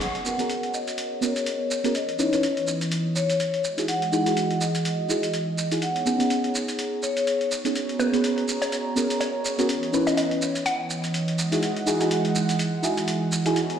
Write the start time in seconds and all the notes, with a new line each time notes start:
0.01 B3 F#4 G#4 A#4 C#5 F#5, closed hi-hat, shaker
0.15 closed hi-hat
0.25 B3 C#4 F#4 G#4 A#4 F#5, shaker
0.38 B3 C#4 F#4 G#4 A#4, closed hi-hat, shaker
0.50 closed hi-hat, shaker
0.63 closed hi-hat
0.74 D#5, shaker
0.88 closed hi-hat, shaker
0.98 closed hi-hat, shaker
1.21 B3 C#4 F#4 G#4 A#4 C#5, shaker
1.36 closed hi-hat, shaker
1.46 closed hi-hat, shaker
1.71 shaker
1.84 B3 C#4 F#4 G#4 A#4, closed hi-hat, shaker
1.95 E3 C#5 D#5, closed hi-hat, shaker
2.09 closed hi-hat
2.19 C#4 D#4 E4 B4 C#5, shaker
2.32 C#4 D#4 E4 B4, closed hi-hat, shaker
2.43 closed hi-hat, shaker
2.57 closed hi-hat
2.67 shaker
2.81 closed hi-hat, shaker
2.92 closed hi-hat, shaker
3.16 C#5, shaker
3.30 closed hi-hat, shaker
3.40 closed hi-hat, shaker
3.54 closed hi-hat
3.64 E3 G#3 F#4 D#5, shaker
3.77 D#4 E4 F#4 G#4, closed hi-hat, shaker
3.88 F#5, closed hi-hat, shaker
4.02 closed hi-hat
4.12 D#4 E4 F#4 G#4 F#5, shaker
4.25 D#4 E4 F#4 G#4, closed hi-hat, shaker
4.37 closed hi-hat, shaker
4.51 closed hi-hat
4.61 D#5, shaker
4.75 closed hi-hat, shaker
4.85 closed hi-hat, shaker
5.08 D#4 E4 F#4 G#4 D#5, shaker
5.23 closed hi-hat, shaker
5.34 closed hi-hat, shaker
5.58 shaker
5.71 D#4 E4 F#4 G#4, closed hi-hat, shaker
5.82 B3 D#4 G#4 C#5 F#5, closed hi-hat, shaker
5.96 closed hi-hat
6.06 B3 C#4 D#4 G#4 F#5, shaker
6.19 B3 C#4 D#4 G#4, closed hi-hat, shaker
6.30 closed hi-hat, shaker
6.44 closed hi-hat
6.55 shaker
6.68 closed hi-hat, shaker
6.79 closed hi-hat, shaker
7.03 C#5, shaker
7.17 closed hi-hat, shaker
7.27 closed hi-hat, shaker
7.41 closed hi-hat
7.51 shaker
7.65 B3 C#4 D#4 G#4, closed hi-hat, shaker
7.75 F#4 G#4 A#5, closed hi-hat, shaker
7.89 closed hi-hat
7.99 B3 C#4 F#4 G#4 A#4 B4, shaker
8.12 B3 C#4 F#4 G#4 B4, closed hi-hat, shaker
8.24 closed hi-hat, shaker
8.38 closed hi-hat
8.48 shaker
8.62 C#5, closed hi-hat, shaker
8.72 closed hi-hat, shaker
8.95 B3 C#4 F#4 G#4 A#4, shaker
9.10 closed hi-hat, shaker
9.21 C#5, closed hi-hat, shaker
9.45 shaker
9.58 B3 C#4 F#4 G#4 A#4, closed hi-hat, shaker
9.69 E3 D#5, closed hi-hat, shaker
9.83 closed hi-hat
9.93 C#4 D#4 E4 B4, shaker
10.06 C#4 D#4 E4 B4 D#5, closed hi-hat, shaker
10.17 D#5, closed hi-hat, shaker
10.31 closed hi-hat
10.42 shaker
10.55 closed hi-hat, shaker
10.66 F#5, closed hi-hat, shaker
10.90 shaker
11.04 closed hi-hat, shaker
11.14 closed hi-hat, shaker
11.28 closed hi-hat
11.38 G#3 F#5, shaker
11.52 D#4 E4 F#4 G#4, closed hi-hat, shaker
11.63 closed hi-hat, shaker
11.76 closed hi-hat
11.86 D#4 E4 F#4 G#4, shaker
11.99 D#4 E4 F#4 G#4, closed hi-hat, shaker
12.11 closed hi-hat, shaker
12.25 closed hi-hat
12.35 shaker
12.49 closed hi-hat, shaker
12.59 closed hi-hat, shaker
12.82 D#4 E4 F#4 G#4, shaker
12.97 closed hi-hat, shaker
13.08 closed hi-hat, shaker
13.32 shaker
13.45 D#4 E4 F#4 G#4, closed hi-hat, shaker
13.56 B3 D#4 C#5 G#5, closed hi-hat, shaker
13.70 closed hi-hat